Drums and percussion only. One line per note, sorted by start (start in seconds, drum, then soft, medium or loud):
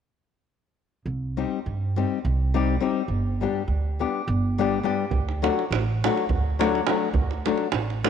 5.11 davul low medium
5.29 davul high soft
5.44 davul high soft
5.59 davul high soft
5.73 davul high medium
6.04 davul high medium
6.17 davul high soft
6.30 davul low medium
6.61 davul high medium
6.75 davul high soft
6.87 davul high medium
7.14 davul low medium
7.31 davul high soft
7.46 davul high soft
7.58 davul high soft
7.72 davul high medium
7.90 davul high soft
8.05 davul high medium